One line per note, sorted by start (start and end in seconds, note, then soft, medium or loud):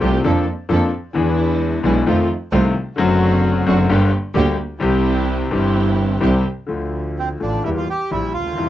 0.01 0.20 C2 medium
0.01 0.21 C2 medium
0.01 0.20 C3 medium
0.01 0.20 F3 soft
0.01 0.20 A3 medium
0.01 0.21 A3 medium
0.01 0.20 C4 medium
0.01 0.21 F4 medium
0.01 0.21 G4 medium
0.24 0.44 F2 medium
0.24 0.44 F3 medium
0.24 0.44 A#3 medium
0.24 0.43 D4 medium
0.24 0.44 D4 medium
0.24 0.44 A4 medium
0.69 0.89 F2 medium
0.69 0.89 F3 medium
0.69 0.89 A#3 medium
0.69 0.89 D4 medium
0.69 0.89 A4 medium
1.14 1.80 E2 medium
1.14 1.81 E2 medium
1.14 1.80 E3 medium
1.14 1.81 G#3 medium
1.14 1.80 B3 medium
1.14 1.81 D4 medium
1.14 1.81 E4 medium
1.14 1.81 G#4 medium
1.83 2.03 B1 medium
1.83 2.03 B2 medium
1.83 2.03 E3 medium
1.83 2.03 G#3 medium
1.83 2.03 B3 medium
1.83 2.03 D4 medium
1.83 2.03 E4 medium
1.83 2.03 G#4 medium
2.06 2.26 F2 medium
2.06 2.26 D#3 medium
2.06 2.26 F3 medium
2.06 2.26 A3 medium
2.06 2.26 C4 medium
2.06 2.26 D#4 medium
2.06 2.26 F4 medium
2.52 2.72 C2 medium
2.52 2.72 C3 medium
2.52 2.72 D#3 medium
2.52 2.72 A3 medium
2.52 2.72 C4 medium
2.52 2.72 D#4 medium
2.52 2.72 F4 medium
2.96 3.64 F#1 medium
2.96 3.63 F#2 medium
2.96 3.62 D3 medium
2.96 3.63 F#3 medium
2.96 3.63 A3 medium
2.96 3.63 C4 medium
2.96 3.64 C4 medium
2.96 3.63 D4 medium
2.96 3.63 F#4 medium
3.00 3.64 F#4 medium
3.66 3.86 F#1 loud
3.66 3.86 F#2 medium
3.66 3.85 D3 medium
3.66 3.86 F#3 medium
3.66 3.86 A3 medium
3.66 3.86 C4 medium
3.66 3.86 D4 medium
3.66 3.86 F#4 medium
3.89 4.08 G1 medium
3.89 4.09 G1 medium
3.89 4.09 G2 medium
3.89 4.08 D3 medium
3.89 4.09 G3 medium
3.89 4.08 A#3 medium
3.89 4.09 A#3 medium
3.89 4.08 D4 medium
3.89 4.08 G4 medium
3.89 4.09 G4 medium
4.34 4.54 D2 medium
4.34 4.55 D2 medium
4.34 4.54 D3 medium
4.34 4.54 G3 medium
4.34 4.54 A#3 medium
4.34 4.55 A#3 medium
4.34 4.55 D4 medium
4.34 4.54 G4 medium
4.34 4.55 G4 medium
4.79 5.47 C2 medium
4.79 5.48 C2 medium
4.79 5.47 C3 medium
4.79 5.46 E3 medium
4.79 5.47 G3 medium
4.79 5.47 C4 medium
4.79 5.48 E4 medium
4.79 5.48 G4 medium
5.49 6.18 G1 medium
5.49 6.18 G2 medium
5.49 6.17 E3 medium
5.49 6.18 G3 medium
5.49 6.18 C4 medium
5.49 6.18 E4 medium
5.49 6.18 G4 medium
5.49 6.19 G4 medium
6.20 6.41 C2 medium
6.20 6.42 C2 medium
6.20 6.41 C3 medium
6.20 6.41 E3 medium
6.20 6.41 G3 medium
6.20 6.41 C4 medium
6.20 6.42 E4 medium
6.20 6.41 G4 medium
6.20 6.42 G4 medium
6.66 7.36 D2 medium
6.66 7.36 D3 medium
6.66 7.36 F3 soft
6.66 7.37 A3 soft
6.71 7.37 D2 medium
6.71 7.37 F4 medium
7.19 7.29 C4 medium
7.40 7.60 A1 soft
7.40 7.61 A1 medium
7.40 7.60 A2 soft
7.40 7.60 D3 soft
7.40 7.60 F3 soft
7.40 7.60 A3 soft
7.40 7.63 D4 medium
7.40 7.60 F4 soft
7.64 7.84 E2 medium
7.64 7.84 E3 medium
7.64 7.84 G3 soft
7.64 7.84 A#3 soft
7.64 7.70 E4 medium
7.64 7.84 G4 medium
7.77 7.89 F4 medium
7.90 8.11 G4 medium
8.11 8.31 A#1 medium
8.11 8.31 A#2 medium
8.11 8.31 E3 soft
8.11 8.31 G3 soft
8.11 8.31 A#3 soft
8.11 8.33 E4 medium
8.11 8.31 G4 soft
8.33 8.58 D2 soft
8.33 8.69 F4 medium
8.40 8.46 C#2 soft
8.46 8.52 D2 soft
8.52 8.58 D#2 soft
8.52 8.69 C3 soft
8.56 8.69 E2 medium
8.56 8.69 E3 medium
8.56 8.69 G3 soft
8.56 8.69 E4 medium